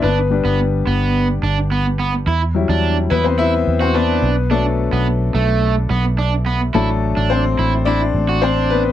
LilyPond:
<<
  \new Staff \with { instrumentName = "Grand piano" } { \time 4/4 \key e \minor \tempo 4 = 107 <b b'>4 r2. | r4. <b b'>16 <c' c''>16 <e' e''>8. <c' c''>16 <b b'>4 | a'2 r2 | a'4 <c' c''>4 <d' d''>4 <c' c''>8 <b b'>8 | }
  \new Staff \with { instrumentName = "Grand piano" } { \time 4/4 \key e \minor r8 <g b d'>4. r2 | r8 <fis g e'>2. r8 | <fis a d'>4. r2 r8 | <fis a d'>4. r2 r8 | }
  \new Staff \with { instrumentName = "Overdriven electric guitar" } { \time 4/4 \key e \minor d'16 r8 b16 r8 b8. r16 d'16 r16 b16 r16 b16 r16 | e'16 r8 d'8 r16 e'16 r16 e'16 r8 fis'16 d'8. r16 | d'16 r8 b16 r8 a8. r16 b16 r16 d'16 r16 b16 r16 | e'16 r8 d'8 r16 e'16 r16 e'16 r8 fis'16 d'8. r16 | }
  \new Staff \with { instrumentName = "Fingered electric bass" } { \clef bass \time 4/4 \key e \minor g,,8. g,,8. g,,4 g,,4. | e,8. e,8. e,4 e,4 b,,8~ | b,,8. b,,8. b,,4 b,,4. | a,,8. a,,8. a,,4 a,,4. | }
>>